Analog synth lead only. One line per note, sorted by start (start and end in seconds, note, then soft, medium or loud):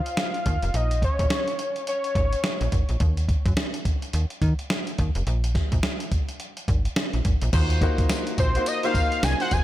0.00 0.77 F5 loud
0.76 1.03 D#5 loud
1.04 1.84 C#5 loud
1.89 2.69 C#5 medium
8.39 8.65 C5 medium
8.67 8.83 D#5 loud
8.84 9.25 F5 loud
9.24 9.41 G#5 loud
9.41 9.54 F#5 loud
9.53 9.64 G#5 loud